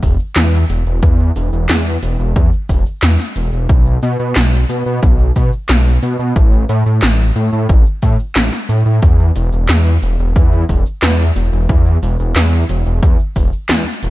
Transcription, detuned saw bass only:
0.03 0.17 E1 medium
0.36 0.64 E2 loud
0.69 0.84 E1 loud
0.86 1.00 E1 loud
1.03 1.31 E2 loud
1.36 1.50 E1 loud
1.53 1.67 E1 loud
1.69 1.98 E2 medium
2.03 2.17 E1 medium
2.19 2.33 E1 loud
2.36 2.50 E2 loud
2.69 2.84 E1 loud
3.03 3.17 E2 loud
3.36 3.50 E1 medium
3.53 3.67 E1 medium
3.69 3.98 B1 loud
4.03 4.17 B2 loud
4.19 4.34 B2 loud
4.36 4.64 B1 medium
4.69 4.83 B2 medium
4.86 5.00 B2 loud
5.03 5.31 B1 loud
5.36 5.50 B2 medium
5.69 5.98 B1 loud
6.03 6.17 B2 loud
6.19 6.33 B2 loud
6.36 6.64 A1 loud
6.69 6.83 A2 loud
6.86 7.00 A2 loud
7.02 7.31 A1 medium
7.36 7.50 A2 medium
7.52 7.67 A2 loud
7.69 7.83 A1 loud
8.03 8.17 A2 medium
8.36 8.50 A1 loud
8.69 8.83 A2 medium
8.86 9.00 A2 loud
9.03 9.31 E2 loud
9.36 9.50 E1 loud
9.52 9.67 E1 loud
9.69 9.98 E2 medium
10.02 10.17 E1 medium
10.19 10.33 E1 loud
10.36 10.64 E2 loud
10.69 10.83 E1 medium
11.02 11.31 E2 medium
11.36 11.50 E1 medium
11.52 11.67 E1 loud
11.69 11.98 E2 loud
12.02 12.17 E1 loud
12.19 12.33 E1 loud
12.36 12.64 E2 medium
12.69 12.84 E1 medium
12.86 13.00 E1 loud
13.03 13.17 E2 loud
13.36 13.50 E1 medium
13.69 13.83 E2 loud
14.03 14.10 E1 medium

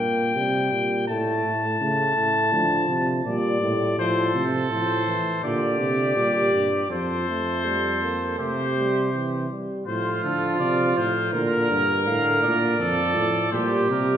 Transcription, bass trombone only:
0.00 0.35 A#2 medium
0.36 0.71 C3 medium
0.72 1.10 A#2 medium
1.08 1.45 A2 medium
1.45 1.80 A2 medium
1.81 2.16 C#3 medium
2.17 2.55 A2 medium
2.53 2.88 D3 medium
2.89 3.24 C3 medium
3.25 3.61 A#2 medium
3.62 3.97 A2 medium
3.98 4.34 A2 medium
4.34 4.70 C3 medium
4.70 5.17 A2 medium
5.44 5.81 A#2 medium
5.80 6.16 C3 medium
6.16 6.53 A#2 medium
6.54 6.92 G2 medium
6.91 8.39 F2 medium
8.39 9.48 C3 medium
9.87 10.21 A2 medium
10.24 10.62 D3 medium
10.61 10.97 C3 medium
10.97 11.33 A2 medium
11.34 11.69 A#2 medium
11.71 12.08 G2 medium
12.07 12.43 A2 medium
12.43 12.79 A#2 medium
12.79 13.18 F2 medium
13.16 13.52 A2 medium
13.53 13.91 A#2 medium
13.89 14.17 C3 medium

